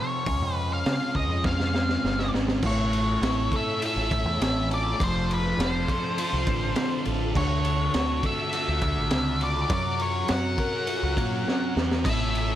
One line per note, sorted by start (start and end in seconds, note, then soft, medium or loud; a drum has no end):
0.00 0.27 F2 medium
0.00 0.26 C3 medium
0.00 0.25 F3 medium
0.00 0.26 C4 medium
0.00 0.26 F4 medium
0.00 0.24 A4 medium
0.00 0.55 C#5 medium
0.26 0.42 C#2 medium
0.26 2.32 C#3 medium
0.26 2.32 G#3 medium
0.26 2.61 C#4 medium
0.26 2.31 C#4 medium
0.26 2.61 F4 medium
0.26 2.61 G#4 medium
0.26 kick loud
0.26 open hi-hat medium
0.42 0.82 F2 medium
0.55 0.73 B4 medium
0.73 1.14 F5 medium
0.86 1.00 C#3 loud
0.86 snare loud
0.86 open hi-hat soft
1.15 1.29 C#2 medium
1.15 1.43 D#5 medium
1.15 kick medium
1.29 1.96 F2 medium
1.44 2.31 F5 medium
1.44 kick loud
1.44 snare medium
1.60 snare medium
1.75 snare medium
1.89 snare medium
2.04 2.31 G1 medium
2.04 snare medium
2.19 snare medium
2.33 2.60 G#1 medium
2.33 2.63 C#3 medium
2.33 2.62 G#3 medium
2.33 2.61 C#4 medium
2.33 snare medium
2.48 snare medium
2.62 3.16 A1 loud
2.62 4.12 A2 medium
2.62 4.97 C#4 medium
2.62 4.97 E4 medium
2.62 9.66 A4 medium
2.62 3.56 C#5 medium
2.62 kick loud
2.62 crash loud
2.93 ride medium
3.22 3.49 A1 loud
3.22 3.82 E4 medium
3.22 snare loud
3.22 ride medium
3.52 5.89 A4 medium
3.52 kick medium
3.52 ride medium
3.56 3.82 E5 medium
3.82 4.70 E4 medium
3.82 4.68 E5 loud
3.82 ride loud
3.96 4.25 A1 loud
4.11 6.47 A3 medium
4.11 kick medium
4.11 ride medium
4.25 4.39 E2 loud
4.40 4.93 A1 medium
4.40 5.00 C#4 medium
4.40 snare loud
4.40 ride loud
4.71 5.00 E4 medium
4.71 5.02 D5 medium
4.71 ride medium
4.99 5.53 F1 loud
4.99 6.48 F3 medium
4.99 9.66 D4 medium
4.99 7.32 F4 medium
4.99 kick loud
4.99 ride loud
5.04 5.32 C5 medium
5.31 5.61 B4 medium
5.31 ride medium
5.58 5.84 F1 loud
5.58 6.17 F4 medium
5.58 snare loud
5.58 ride loud
5.64 7.04 C5 medium
5.88 7.36 A4 medium
5.88 kick medium
5.88 ride medium
6.18 7.05 F4 medium
6.18 ride loud
6.33 6.46 C2 loud
6.47 6.73 A1 loud
6.47 7.34 D3 medium
6.47 kick medium
6.47 ride medium
6.76 7.36 C4 medium
6.76 snare loud
6.76 ride medium
7.05 7.33 A1 medium
7.05 7.35 F4 medium
7.05 ride medium
7.35 7.88 D2 loud
7.35 8.82 D3 medium
7.35 12.02 F#4 medium
7.35 8.26 C#5 medium
7.35 kick loud
7.35 crash loud
7.64 ride medium
7.94 8.21 D2 loud
7.94 8.54 F#4 medium
7.94 snare loud
7.94 ride medium
8.23 9.70 A4 medium
8.23 8.54 E5 medium
8.23 kick medium
8.23 ride medium
8.53 9.41 F#4 medium
8.53 9.43 E5 loud
8.53 ride medium
8.68 8.97 D2 medium
8.81 9.71 D3 medium
8.81 kick medium
8.81 ride medium
8.97 9.10 A1 loud
9.10 9.64 C#2 medium
9.10 9.71 D4 medium
9.10 snare loud
9.10 ride medium
9.41 9.71 F#4 medium
9.41 9.72 D5 medium
9.41 ride medium
9.70 10.23 F#2 loud
9.70 11.17 F#3 medium
9.70 12.55 C#4 medium
9.70 12.04 A#4 medium
9.70 10.02 D5 loud
9.70 kick loud
9.70 ride medium
9.99 10.31 C#5 medium
9.99 ride medium
10.28 10.56 F#2 loud
10.28 10.88 F#4 medium
10.28 11.73 F#5 medium
10.28 snare loud
10.28 ride medium
10.58 12.06 A#4 medium
10.58 kick medium
10.58 ride medium
10.87 11.74 F#4 medium
10.87 ride loud
11.03 11.16 C#2 medium
11.17 11.44 A#2 medium
11.17 12.06 F#3 medium
11.17 kick medium
11.17 ride medium
11.48 12.06 C#4 medium
11.48 snare medium
11.75 12.03 E2 medium
11.75 12.05 F#4 medium
11.75 snare medium
11.92 snare loud
12.05 12.55 A1 loud
12.05 12.55 A2 medium
12.05 12.55 E4 medium
12.05 12.55 A4 medium
12.05 12.55 E5 loud
12.05 kick loud
12.05 ride loud
12.05 crash loud
12.35 ride medium